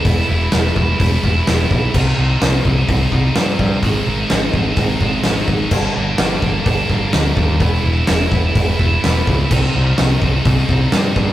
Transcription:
0.04 picked electric bass E1, distorted electric guitar E3 G3 B3 E4, kick, open hi-hat
0.28 picked electric bass E1, distorted electric guitar G3 B3 E4
0.52 picked electric bass E1, distorted electric guitar E3 G3 B3 E4, snare, open hi-hat
0.76 picked electric bass E1, distorted electric guitar G3 B3 E4, kick
1.00 picked electric bass E1, kick, open hi-hat
1.23 picked electric bass E1, distorted electric guitar G3 B3 E4, kick
1.47 picked electric bass E1, distorted electric guitar E3 G3 B3 E4, snare, open hi-hat
1.71 picked electric bass B1, kick
1.94 picked electric bass C2, distorted electric guitar C3 G3 C4 D#4, kick, crash
2.18 picked electric bass C2, distorted electric guitar G3 C4 D#4
2.42 picked electric bass C2, distorted electric guitar C3 G3 C4 D#4, snare, open hi-hat
2.65 picked electric bass C2, distorted electric guitar G3 C4 D#4, kick
2.89 picked electric bass C2, kick, open hi-hat
3.12 picked electric bass C2, distorted electric guitar G3 C4 D#4, kick
3.35 picked electric bass G2, distorted electric guitar C3 G3 C4 D#4, snare, open hi-hat
3.59 picked electric bass G2, kick
3.82 picked electric bass G#1, distorted electric guitar G#2 D#3 G#3 C4 D#4, kick, open hi-hat
4.06 picked electric bass G#1, distorted electric guitar G#3 C4 D#4
4.29 picked electric bass G#1, distorted electric guitar D#3 G#3 C4 D#4, snare, open hi-hat
4.53 picked electric bass G#1, distorted electric guitar G#3 C4 D#4, kick
4.76 picked electric bass G#1, kick, open hi-hat
5.01 picked electric bass G#1, distorted electric guitar G#3 C4 D#4, kick
5.24 picked electric bass G#1, distorted electric guitar G#2 D#3 G#3 C4 D#4, snare, open hi-hat
5.48 picked electric bass G#1, kick
5.71 picked electric bass G1, distorted electric guitar G2 D3 G3 A#3 D4, kick, crash
5.95 picked electric bass G1, distorted electric guitar G3 A#3 D4
6.18 picked electric bass G1, distorted electric guitar D3 G3 A#3 D4, snare, open hi-hat
6.42 picked electric bass G1, distorted electric guitar G3 A#3 D4, kick
6.66 picked electric bass G1, kick, open hi-hat
6.90 picked electric bass G1, distorted electric guitar G3 A#3 D4, kick
7.12 picked electric bass D2, distorted electric guitar G2 D3 G3 A#3 D4, snare, open hi-hat
7.37 picked electric bass D#2, kick
7.60 picked electric bass E1, distorted electric guitar E3 G3 B3 E4, kick, open hi-hat
7.84 picked electric bass E1, distorted electric guitar G3 B3 E4
8.07 picked electric bass E1, distorted electric guitar E3 G3 B3 E4, snare, open hi-hat
8.32 picked electric bass E1, distorted electric guitar G3 B3 E4, kick
8.55 picked electric bass E1, kick, open hi-hat
8.79 picked electric bass E1, distorted electric guitar G3 B3 E4, kick
9.03 picked electric bass E1, distorted electric guitar E3 G3 B3 E4, snare, open hi-hat
9.27 picked electric bass C#2, kick
9.51 picked electric bass C2, distorted electric guitar C3 G3 C4 D#4, kick, crash
9.74 picked electric bass C2, distorted electric guitar G3 C4 D#4
9.98 picked electric bass C2, distorted electric guitar C3 G3 C4 D#4, snare, open hi-hat
10.21 picked electric bass C2, distorted electric guitar G3 C4 D#4, kick
10.45 picked electric bass C2, kick, open hi-hat
10.69 picked electric bass C2, distorted electric guitar G3 C4 D#4, kick
10.92 picked electric bass G2, distorted electric guitar C3 G3 C4 D#4, snare, open hi-hat
11.16 picked electric bass G2, kick

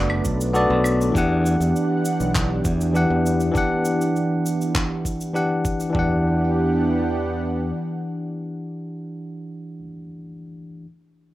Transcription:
Already playing: fingered electric bass F#1, analog synth pad A3 B3 D4, tine electric piano B3 F#4 A4 D5
0.10 claves
0.25 fingered electric bass B1, kick, cabasa
0.41 cabasa
0.53 tine electric piano B3 F#4 A4 D5, cabasa
0.70 fingered electric bass B1
0.84 cabasa, claves
1.01 cabasa
1.12 fingered electric bass E2, tine electric piano E3 D4 G4, analog synth pad E3 B3 D4 G4 F#5, kick
1.16 tine electric piano F#5, cabasa
1.46 cabasa
1.60 fingered electric bass E2, cabasa
1.76 cabasa
2.05 cabasa
2.20 fingered electric bass B1, cabasa
2.35 kick, clap, cabasa
2.65 fingered electric bass E2, kick, cabasa
2.81 cabasa
2.93 tine electric piano E3 D4 G4 F#5, cabasa
3.10 fingered electric bass E2
3.26 cabasa
3.40 cabasa
3.52 tine electric piano E3 D4 G4, kick, cabasa
3.56 analog synth pad E4, tine electric piano F#5
3.85 cabasa
4.01 cabasa
4.16 cabasa
4.46 cabasa
4.61 cabasa
4.75 kick, clap, cabasa
5.05 kick, cabasa
5.21 cabasa
5.33 tine electric piano E3 D4 G4 F#5, cabasa
5.65 kick, cabasa
5.80 cabasa
5.90 tine electric piano E3 D4
5.95 fingered electric bass E2, analog synth pad E3 B3 D4 G4 F#5, tine electric piano G4, kick, floor tom
5.99 tine electric piano F#5

